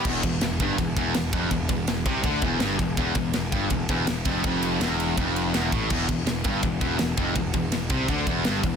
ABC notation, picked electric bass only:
X:1
M:4/4
L:1/8
Q:1/4=164
K:Ephr
V:1 name="Picked electric bass" clef=bass
E,,, E,,, E,,, G,,, E,,, E,,, E,,, F,,, | E,,, E,,, E,,, C,, D,, E,,, G,,, E,,, | E,,, E,,, E,,, G,,, E,,, E,,, E,,, F,,, | F,,,2 E,,,2 F,,,2 E,,, A,,, |
E,,, E,,, E,,, G,,, E,,, E,,, E,,, F,,, | E,,, E,,, E,,, C,, D,, E,,, G,,, E,,, |]